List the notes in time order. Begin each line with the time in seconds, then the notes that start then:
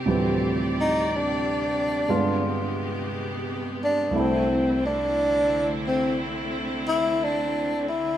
Already playing: C3 C4 G4
0.06 D2 A2 E3 F3 G3 C4 D5
0.81 D#4
1.15 D4
2.09 G2 D3 G#3 B3 F4 G4
3.84 D4
4.11 C2 C3 D3 A3 C4 D4 E4
4.15 E4
4.19 C4
4.86 D4
5.88 C4
6.88 E4
7.24 D4
7.89 E4